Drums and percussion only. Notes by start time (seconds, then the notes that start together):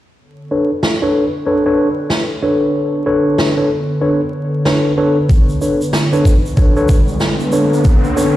0.83 snare
2.10 snare
3.38 snare
4.65 snare
5.29 kick, shaker
5.49 shaker
5.62 shaker
5.81 shaker
5.93 snare, shaker
6.13 shaker
6.25 kick, shaker
6.46 shaker
6.57 kick, shaker
6.76 shaker
6.89 kick, shaker
7.08 shaker
7.20 snare, shaker
7.40 shaker
7.52 shaker
7.73 shaker
7.84 kick, shaker
8.04 shaker
8.18 shaker